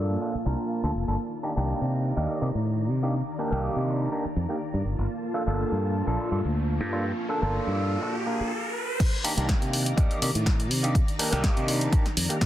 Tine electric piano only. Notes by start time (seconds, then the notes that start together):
Already playing: A#3 D4 F4 A4
0.21 A#3 D4 F4 A4
0.45 A#3 D4 F4 A#4
0.83 A#3 D4 F4 A4
1.07 A#3 D4 F4 A4
1.43 A#3 D4 D#4 G4
1.56 A#3 D4 D#4 G4
2.16 A#3 D4 D#4 G4
2.41 A#3 D4 D#4 G4
3.03 A#3 D4 D#4 G4
3.38 A#3 D4 D#4 G4
3.51 A#3 D4 D#4 G4
4.12 A#3 D4 D#4 G4
4.49 A#3 D4 D#4 G4
5.34 A#3 D4 F4 A4
5.46 A#3 D4 F4 A4
6.06 A#3 D4 F4 A4
6.31 A#3 D4 F4 A4
6.92 A#3 D4 F4 A4
7.29 A#3 D4 F4 A4
7.42 A#3 D4 F4 A4
8.02 A#3 D4 F4 A4
8.26 A#3 D4 F4 A#4
9.24 A#3 D4 D#4 G4
9.36 A#3 D4 D#4 G4
9.97 A#3 D4 D#4 G4
10.21 A#3 D4 D#4 G4
10.83 A#3 D4 D#4 G4
11.19 A#3 D4 D#4 G4
11.31 A#3 D4 D#4 G4
11.92 A#3 D4 D#4 G4
12.29 A#3 D4 D#4 G4